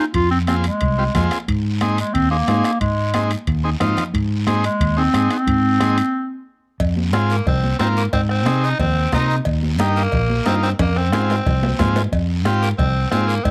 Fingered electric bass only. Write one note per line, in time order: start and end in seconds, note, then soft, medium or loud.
0.15 0.68 F2 medium
0.81 1.08 C2 medium
1.15 1.28 F2 medium
1.48 2.01 G#2 medium
2.15 2.41 D#2 medium
2.48 2.61 G#2 medium
2.81 3.34 G#2 medium
3.48 3.74 D#2 medium
3.80 3.94 G#2 medium
4.14 4.67 G#2 medium
4.81 5.07 D#2 medium
5.14 5.27 G#2 medium
5.47 6.00 G#2 medium
6.80 7.13 F2 medium
7.13 7.40 G#2 medium
7.46 7.73 C2 loud
7.80 8.06 G#2 medium
8.13 8.46 G#2 medium
8.46 8.73 C3 medium
8.79 9.06 D#2 loud
9.13 9.39 C3 medium
9.46 9.79 D#2 medium
9.79 10.06 G2 loud
10.13 10.39 A#1 loud
10.46 10.72 G2 medium
10.80 11.13 F2 medium
11.13 11.39 G#2 medium
11.46 11.72 C2 loud
11.79 12.05 G#2 medium
12.12 12.45 F2 medium
12.45 12.72 G#2 medium
12.79 13.05 C2 loud
13.12 13.38 G#2 medium
13.45 13.51 G#2 medium